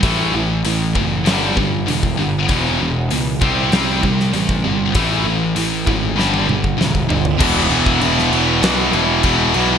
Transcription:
<<
  \new Staff \with { instrumentName = "Distorted electric guitar" } { \clef bass \time 4/4 \key a \major \tempo 4 = 98 <a, e a>8 <a, e>8 <a, e>8 <a, e>8 <g, d g>8 <g, d>8 <g, d>8 <g, d>8 | <e, b, e>8 <e, b,>8 <e, b,>8 <c g c'>8 <c g c'>8 <c g>8 <c g>8 <c g>8 | <a, e a>8 <a, e>8 <a, e>8 <a, e>8 <g, d g>8 <g, d>8 <g, d>8 <g, d>8 | <e, b, e>2~ <e, b, e>8 <e, b, e>8 <e, b, e>4 | }
  \new Staff \with { instrumentName = "Distorted electric guitar" } { \clef bass \time 4/4 \key a \major <a, e a>8 <a, e>8 <a, e>8 <a, e>8 <g, d g>8 <g, d>8 <g, d>8 <g, d>8 | <e, b, e>8 <e, b,>8 <e, b,>8 <c g c'>8 <c g c'>8 <c g>8 <c g>8 <c g>8 | <a, e a>8 <a, e>8 <a, e>8 <a, e>8 <g, d g>8 <g, d>8 <g, d>8 <g, d>8 | <e, b, e>2 <e, b, e>2 | }
  \new Staff \with { instrumentName = "Distorted electric guitar" } { \clef bass \time 4/4 \key a \major r1 | r1 | r1 | <e, b, e>4 <e, b, e>8 <e, b, e>8 <e, b, e>4 <e, b, e>8 <e, b, e>8 | }
  \new Staff \with { instrumentName = "Picked electric bass" } { \clef bass \time 4/4 \key a \major a,,8 a,,8 a,,8 fis,,8 g,,8 g,,8 e,,8 g,,8 | e,,8 e,,8 cis,8 c,8 c,8 c,8 a,,8 g,,8 | a,,8 a,,8 a,,8 gis,,8 g,,8 g,,8 e,,8 g,,8 | e,,8 e,,8 e,,8 e,,8 b,,8 e,,8 e,,8 b,,8 | }
  \new DrumStaff \with { instrumentName = "Drums" } \drummode { \time 4/4 <hho bd>4 hho8 bd8 <hho sn>8 bd8 hho16 bd8. | <hho bd>4 hho8 bd8 <hho sn>8 bd16 sn16 hho16 bd8. | <hho bd>4 hho8 bd8 sn16 tommh16 toml16 bd16 sn16 bd16 tomfh16 tomfh16 | <cymc bd>8 cymc16 bd16 cymc16 sn16 cymc8 <cymc sn>8 cymc8 <cymc bd>8 cymc8 | }
>>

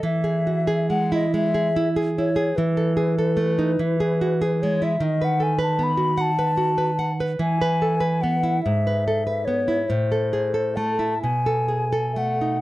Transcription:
<<
  \new Staff \with { instrumentName = "Flute" } { \time 6/8 \key e \major \tempo 4. = 48 e''4 fis''16 dis''16 e''4 cis''8 | b'2~ b'8 cis''16 e''16 | dis''16 fis''16 gis''16 a''16 b''8 a''4~ a''16 r16 | gis''4 fis''8 e''4 cis''8 |
c''4 a''8 gis''4 fis''8 | }
  \new Staff \with { instrumentName = "Nylon-string guitar" } { \time 6/8 \key e \major e16 gis'16 fis'16 gis'16 gis16 e'16 gis16 gis'16 e'16 gis'16 e'16 gis'16 | e16 a'16 gis'16 a'16 a16 dis'16 e16 gis'16 fis'16 gis'16 gis16 e'16 | dis16 b'16 a'16 b'16 b16 fis'16 fis''16 b'16 fis'16 b'16 fis''16 b'16 | e16 b'16 a'16 b'16 b16 e'16 gis,16 b'16 a'16 b'16 b16 e'16 |
a,16 a'16 gis'16 a'16 a16 e'16 b,16 a'16 gis'16 a'16 a16 dis'16 | }
>>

